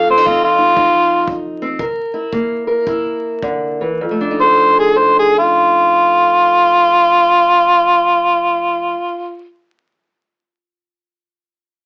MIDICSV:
0, 0, Header, 1, 4, 480
1, 0, Start_track
1, 0, Tempo, 509338
1, 1689, Time_signature, 4, 2, 24, 8
1, 1689, Tempo, 544465
1, 3129, Tempo, 585366
1, 10039, End_track
2, 0, Start_track
2, 0, Title_t, "Harmonica"
2, 0, Program_c, 0, 22
2, 98, Note_on_c, 0, 72, 85
2, 249, Note_on_c, 0, 65, 77
2, 263, Note_off_c, 0, 72, 0
2, 400, Note_off_c, 0, 65, 0
2, 417, Note_on_c, 0, 65, 97
2, 1341, Note_off_c, 0, 65, 0
2, 3932, Note_on_c, 0, 72, 99
2, 4240, Note_off_c, 0, 72, 0
2, 4246, Note_on_c, 0, 68, 73
2, 4399, Note_on_c, 0, 72, 79
2, 4411, Note_off_c, 0, 68, 0
2, 4558, Note_off_c, 0, 72, 0
2, 4573, Note_on_c, 0, 68, 83
2, 4725, Note_off_c, 0, 68, 0
2, 4733, Note_on_c, 0, 65, 96
2, 8075, Note_off_c, 0, 65, 0
2, 10039, End_track
3, 0, Start_track
3, 0, Title_t, "Steel-string acoustic guitar"
3, 0, Program_c, 1, 25
3, 0, Note_on_c, 1, 41, 77
3, 0, Note_on_c, 1, 53, 61
3, 0, Note_on_c, 1, 60, 59
3, 0, Note_on_c, 1, 69, 67
3, 87, Note_off_c, 1, 60, 0
3, 87, Note_on_c, 1, 60, 61
3, 167, Note_off_c, 1, 60, 0
3, 167, Note_on_c, 1, 63, 52
3, 217, Note_off_c, 1, 41, 0
3, 252, Note_on_c, 1, 41, 69
3, 260, Note_on_c, 1, 60, 57
3, 540, Note_off_c, 1, 63, 0
3, 551, Note_on_c, 1, 63, 54
3, 688, Note_off_c, 1, 41, 0
3, 716, Note_off_c, 1, 63, 0
3, 718, Note_on_c, 1, 41, 71
3, 728, Note_on_c, 1, 63, 54
3, 1164, Note_off_c, 1, 41, 0
3, 1213, Note_on_c, 1, 41, 67
3, 1524, Note_off_c, 1, 60, 0
3, 1528, Note_on_c, 1, 60, 58
3, 1660, Note_off_c, 1, 41, 0
3, 1672, Note_off_c, 1, 63, 0
3, 1678, Note_off_c, 1, 53, 0
3, 1688, Note_off_c, 1, 69, 0
3, 1691, Note_on_c, 1, 48, 73
3, 1697, Note_on_c, 1, 70, 67
3, 1723, Note_off_c, 1, 60, 0
3, 1994, Note_on_c, 1, 64, 56
3, 2123, Note_off_c, 1, 48, 0
3, 2156, Note_on_c, 1, 48, 68
3, 2162, Note_on_c, 1, 58, 56
3, 2454, Note_off_c, 1, 70, 0
3, 2465, Note_on_c, 1, 70, 58
3, 2600, Note_off_c, 1, 48, 0
3, 2632, Note_off_c, 1, 64, 0
3, 2637, Note_on_c, 1, 48, 66
3, 2643, Note_on_c, 1, 64, 59
3, 3093, Note_off_c, 1, 48, 0
3, 3132, Note_on_c, 1, 50, 64
3, 3431, Note_off_c, 1, 50, 0
3, 3444, Note_on_c, 1, 52, 57
3, 3583, Note_off_c, 1, 70, 0
3, 3584, Note_off_c, 1, 58, 0
3, 3585, Note_off_c, 1, 64, 0
3, 3607, Note_on_c, 1, 41, 60
3, 3609, Note_off_c, 1, 52, 0
3, 3689, Note_on_c, 1, 57, 62
3, 3769, Note_on_c, 1, 62, 55
3, 3852, Note_on_c, 1, 63, 59
3, 3937, Note_on_c, 1, 69, 57
3, 7654, Note_off_c, 1, 41, 0
3, 7736, Note_off_c, 1, 57, 0
3, 7816, Note_off_c, 1, 62, 0
3, 7899, Note_off_c, 1, 63, 0
3, 7984, Note_off_c, 1, 69, 0
3, 10039, End_track
4, 0, Start_track
4, 0, Title_t, "Drums"
4, 250, Note_on_c, 9, 36, 65
4, 344, Note_off_c, 9, 36, 0
4, 723, Note_on_c, 9, 36, 60
4, 817, Note_off_c, 9, 36, 0
4, 1202, Note_on_c, 9, 36, 64
4, 1296, Note_off_c, 9, 36, 0
4, 1692, Note_on_c, 9, 36, 67
4, 1780, Note_off_c, 9, 36, 0
4, 2159, Note_on_c, 9, 36, 66
4, 2247, Note_off_c, 9, 36, 0
4, 2638, Note_on_c, 9, 36, 65
4, 2726, Note_off_c, 9, 36, 0
4, 3130, Note_on_c, 9, 36, 64
4, 3212, Note_off_c, 9, 36, 0
4, 10039, End_track
0, 0, End_of_file